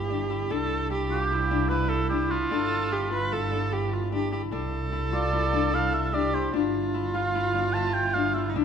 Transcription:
0.00 0.52 G1 medium
0.00 0.30 E4 medium
0.00 0.52 G4 medium
0.10 0.50 D4 medium
0.30 0.90 E4 medium
0.50 2.53 C2 medium
0.50 1.50 D4 medium
0.50 0.91 A4 medium
0.90 1.16 E4 medium
0.90 1.34 G4 medium
1.10 1.37 F4 medium
1.10 1.71 G4 medium
1.31 1.70 E4 medium
1.31 2.53 E4 medium
1.51 2.10 D4 medium
1.69 2.30 E4 medium
1.69 1.91 B4 medium
1.89 2.09 A4 medium
2.09 2.51 D4 medium
2.09 2.32 G4 medium
2.31 2.90 E4 medium
2.31 3.52 F4 medium
2.51 4.55 G1 medium
2.51 3.51 D4 medium
2.51 2.94 A4 loud
2.91 3.17 E4 medium
2.91 3.12 G4 medium
3.11 3.37 F4 medium
3.11 3.34 B4 medium
3.31 3.71 E4 medium
3.31 3.74 A4 medium
3.52 4.12 D4 medium
3.72 4.32 E4 medium
3.72 3.94 G4 medium
3.93 4.12 F4 medium
4.12 4.52 D4 medium
4.12 4.31 G4 medium
4.32 4.92 E4 medium
4.32 4.41 G4 medium
4.52 6.55 C2 medium
4.52 5.53 D4 medium
4.52 6.09 A4 medium
4.92 5.19 E4 medium
5.13 5.39 F4 medium
5.13 5.76 D5 medium
5.33 5.73 E4 medium
5.53 6.13 D4 medium
5.73 6.33 E4 medium
5.73 5.96 F5 medium
5.94 6.15 E5 medium
6.13 6.53 D4 medium
6.13 6.52 G4 medium
6.13 6.36 D5 medium
6.34 6.94 E4 medium
6.34 6.54 C5 medium
6.54 8.57 G1 medium
6.54 7.54 D4 medium
6.54 8.51 F4 medium
6.94 7.20 E4 medium
7.14 7.41 F4 medium
7.14 7.75 F5 medium
7.35 8.36 E4 medium
7.55 8.15 D4 medium
7.74 8.65 E5 medium
7.74 7.95 A5 medium
7.94 8.15 G5 medium
8.14 8.55 D4 medium
8.14 8.36 F5 medium
8.34 8.65 E4 medium
8.34 8.55 E5 medium
8.49 8.58 D#4 medium
8.56 8.65 C2 medium
8.56 8.65 D4 medium
8.56 8.65 E4 medium

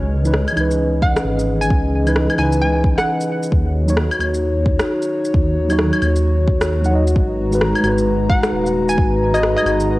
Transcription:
0.00 0.46 C#2 loud
0.00 3.49 C#4 medium
0.00 3.49 G#4 medium
0.00 3.49 B4 medium
0.00 3.49 D#5 medium
0.23 0.30 E3 medium
0.23 0.31 D#4 medium
0.23 0.32 B4 loud
0.23 shaker medium
0.34 cross-stick medium
0.48 claves medium
0.48 shaker soft
0.52 2.02 E3 medium
0.56 1.14 C#2 medium
0.56 2.04 D#4 medium
0.56 claves medium
0.56 shaker soft
0.61 2.06 B4 medium
0.71 shaker medium
1.02 1.27 F#5 medium
1.02 kick loud
1.16 cross-stick loud
1.16 shaker medium
1.25 1.69 G#1 loud
1.39 shaker soft
1.61 1.85 G#5 medium
1.61 shaker medium
1.70 2.28 C#2 medium
1.70 kick loud
2.05 2.34 E3 medium
2.05 2.36 D#4 medium
2.05 claves soft
2.05 shaker medium
2.09 2.37 B4 loud
2.16 cross-stick loud
2.30 claves medium
2.30 shaker soft
2.35 2.96 C#2 medium
2.35 3.49 E3 medium
2.35 2.60 G#5 medium
2.35 claves soft
2.35 shaker soft
2.39 3.51 D#4 medium
2.43 3.54 B4 loud
2.52 shaker medium
2.62 2.86 G#5 medium
2.84 kick loud
2.98 3.30 F#5 medium
2.98 cross-stick loud
2.98 shaker medium
3.21 shaker soft
3.43 shaker medium
3.52 4.10 D#2 loud
3.52 7.12 D#4 medium
3.52 9.99 F#4 medium
3.52 7.12 C#5 medium
3.52 kick loud
3.86 3.93 F#3 medium
3.86 3.94 D#4 medium
3.86 shaker medium
3.90 3.95 C#5 medium
3.97 cross-stick loud
4.11 claves medium
4.11 shaker soft
4.19 4.78 D#2 medium
4.19 claves soft
4.19 shaker soft
4.34 shaker medium
4.66 kick loud
4.80 cross-stick loud
4.80 shaker medium
5.02 shaker soft
5.25 shaker medium
5.34 5.92 D#2 medium
5.34 kick loud
5.69 5.99 F#3 medium
5.69 6.00 D#4 medium
5.69 6.01 C#5 medium
5.69 claves soft
5.69 shaker medium
5.79 cross-stick loud
5.93 claves medium
5.93 shaker soft
6.02 6.60 D#2 medium
6.02 claves soft
6.02 shaker soft
6.16 shaker soft
6.48 kick loud
6.61 7.15 D#2 medium
6.61 cross-stick loud
6.61 shaker medium
6.82 6.90 F#3 medium
6.82 6.91 D#4 medium
6.82 6.92 F#5 medium
6.82 shaker soft
6.91 7.01 F#3 medium
6.91 7.02 D#4 medium
6.95 7.03 D#5 medium
7.07 shaker medium
7.15 7.73 G#1 medium
7.15 9.99 G#3 medium
7.15 9.99 D#4 medium
7.15 9.99 B4 medium
7.15 9.99 A#5 medium
7.15 kick loud
7.51 7.57 G#3 medium
7.51 7.58 F#4 medium
7.51 7.59 B4 medium
7.51 shaker medium
7.61 cross-stick loud
7.75 claves medium
7.75 shaker soft
7.80 8.42 G#1 medium
7.80 9.29 G#3 medium
7.80 claves soft
7.80 shaker soft
7.84 9.31 F#4 medium
7.88 9.33 B4 medium
7.98 shaker medium
8.29 8.54 F#5 medium
8.29 kick loud
8.43 cross-stick loud
8.43 shaker medium
8.52 8.97 D#1 loud
8.66 shaker soft
8.89 9.13 G#5 medium
8.89 shaker medium
8.98 9.55 G#1 loud
8.98 kick loud
9.33 9.61 G#3 medium
9.33 9.64 F#4 medium
9.33 9.65 B4 loud
9.33 9.54 D#5 medium
9.33 claves soft
9.33 shaker medium
9.43 cross-stick loud
9.56 9.80 D#5 medium
9.56 claves medium
9.56 shaker soft
9.62 9.99 G#1 medium
9.62 9.99 G#3 medium
9.62 claves medium
9.62 shaker soft
9.67 9.99 F#4 medium
9.71 9.99 B4 loud
9.80 shaker soft

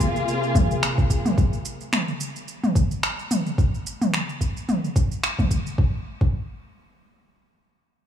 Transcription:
0.00 1.34 C3 medium
0.00 1.34 A#3 medium
0.00 1.36 F4 medium
0.00 1.34 G#4 medium
0.00 kick medium
0.00 shaker medium
0.16 shaker soft
0.28 shaker soft
0.43 shaker soft
0.55 kick loud
0.55 mid tom medium
0.55 shaker medium
0.71 shaker soft
0.83 finger snap medium
0.83 shaker soft
0.98 kick medium
0.98 shaker soft
1.10 kick soft
1.10 shaker medium
1.26 mid tom medium
1.26 shaker soft
1.38 kick loud
1.38 shaker soft
1.53 shaker soft
1.65 shaker medium
1.81 shaker soft
1.93 finger snap medium
1.93 mid tom medium
1.93 shaker soft
2.08 shaker soft
2.20 shaker medium
2.36 shaker soft
2.48 shaker soft
2.64 mid tom medium
2.64 shaker soft
2.75 kick loud
2.75 shaker medium
2.91 shaker soft
3.03 finger snap loud
3.03 shaker soft
3.19 shaker soft
3.31 mid tom medium
3.31 shaker medium
3.47 shaker soft
3.58 kick loud
3.58 shaker soft
3.74 shaker soft
3.87 shaker medium
4.02 mid tom medium
4.02 shaker soft
4.14 finger snap medium
4.14 shaker soft
4.29 shaker soft
4.41 kick medium
4.41 shaker medium
4.57 shaker soft
4.69 mid tom medium
4.69 shaker soft
4.84 shaker soft
4.96 kick medium
4.96 shaker medium
5.12 shaker soft
5.24 finger snap loud
5.24 shaker soft
5.39 kick medium
5.39 mid tom medium
5.39 shaker soft
5.51 kick medium
5.51 shaker medium
5.66 shaker soft
5.78 kick loud
6.21 kick medium

